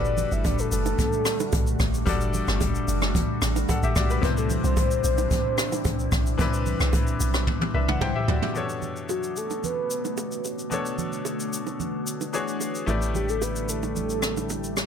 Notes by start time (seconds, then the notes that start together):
Already playing: G1 D3 G3 A3 D4 F#4 A4 B4 D5
0.05 shaker
0.17 open hi-hat, low conga, shaker
0.32 G1 E5, shaker
0.44 D5, kick, hi-hat pedal, high bongo, shaker
0.59 A4, shaker
0.72 F#1 A4, open hi-hat, shaker
0.86 low bongo, shaker
0.99 kick, hi-hat pedal, low conga, shaker
1.13 shaker
1.25 cross-stick, open hi-hat, shaker
1.40 low bongo, shaker
1.52 B1, kick, hi-hat pedal, high bongo, shaker
1.67 shaker
1.80 A1, kick, cross-stick, open hi-hat, shaker
1.94 shaker
2.06 G1 G3 D4 F#4 A4 D5, kick, hi-hat pedal, low conga, shaker
2.21 shaker
2.34 open hi-hat, low conga, shaker
2.48 G1, cross-stick, shaker
2.61 kick, hi-hat pedal, high bongo, shaker
2.75 shaker
2.88 F#1, open hi-hat, shaker
3.02 cross-stick, low bongo, shaker
3.15 kick, hi-hat pedal, low conga, shaker
3.42 A1, cross-stick, open hi-hat, shaker
3.56 low bongo, shaker
3.69 A4 F#5, kick, hi-hat pedal, high bongo, shaker
3.83 A1 G4 E5, shaker
3.96 B1 F#4 D5, kick, cross-stick, open hi-hat, shaker
4.10 D4 B4, shaker
4.21 C2 C3 E3 C4 D4 E4 B4 C5, kick, hi-hat pedal, low conga, shaker
4.37 A4, shaker
4.50 open hi-hat, low conga, shaker
4.64 C2 C5, shaker
4.77 kick, hi-hat pedal, high bongo, shaker
4.91 shaker
5.04 B1 C5, open hi-hat, shaker
5.18 low bongo, shaker
5.31 kick, hi-hat pedal, low conga, shaker
5.58 cross-stick, open hi-hat, shaker
5.72 low bongo, shaker
5.85 C2, kick, hi-hat pedal, high bongo, shaker
5.99 shaker
6.12 B1, kick, cross-stick, open hi-hat, shaker
6.26 shaker
6.38 C2 E3 C4 D4 E4 B4, kick, hi-hat pedal, low conga, shaker
6.53 shaker
6.66 open hi-hat, low conga, shaker
6.80 C2, cross-stick, shaker
6.93 kick, hi-hat pedal, high bongo, shaker
7.07 shaker
7.20 B1, open hi-hat, shaker
7.34 cross-stick, low bongo, shaker
7.47 kick, high tom, low conga
7.61 high tom
7.74 C2 D4 B4 E5
7.88 F#5, mid tom, low bongo
8.01 C2 E4 C5 G5, kick, mid tom, high bongo
8.15 G4 E5
8.28 D2 F#4 D5, floor tom
8.42 G4 E5, floor tom
8.54 B2 D3 A3 B3 D4 F#4 A4 C#5, low conga, shaker
8.69 shaker
8.82 low conga, shaker
8.96 shaker
9.09 F#4, high bongo, shaker
9.23 shaker
9.37 A4, shaker
9.50 low bongo, shaker
9.64 B4, low conga, shaker
9.91 shaker
10.05 low bongo, shaker
10.17 high bongo, shaker
10.32 shaker
10.45 high bongo, shaker
10.59 shaker
10.70 B2 B3 D4 A4 C#5, low conga, shaker
10.86 shaker
10.98 low conga, shaker
11.13 shaker
11.25 high bongo, shaker
11.40 shaker
11.53 shaker
11.67 low bongo, shaker
11.80 low conga, shaker
12.07 shaker
12.21 low bongo, shaker
12.33 E3 B3 D4 E4 F#4 G#4 C#5, high bongo, shaker
12.48 shaker
12.61 high bongo, shaker
12.75 shaker
12.86 A1 G3 A3 E4 G4 B4 D5, low conga, shaker
13.02 shaker
13.15 G4, low conga, shaker
13.29 A4, shaker
13.42 B4, high bongo, shaker
13.56 shaker
13.69 A4, shaker
13.83 low bongo, shaker
13.96 low conga, shaker
14.10 shaker
14.22 cross-stick, shaker
14.37 low bongo, shaker
14.49 high bongo, shaker
14.64 shaker
14.77 cross-stick, high bongo, shaker